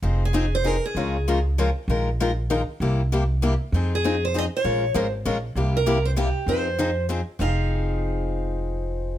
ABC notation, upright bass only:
X:1
M:3/4
L:1/8
Q:"Swing" 1/4=196
K:Fm
V:1 name="Upright bass" clef=bass
F,,,6 | D,,6 | B,,,6 | C,,6 |
F,,6 | B,,,2 A,,,2 B,,,2 | C,,6 | F,,6 |
F,,,6- | F,,,6 |]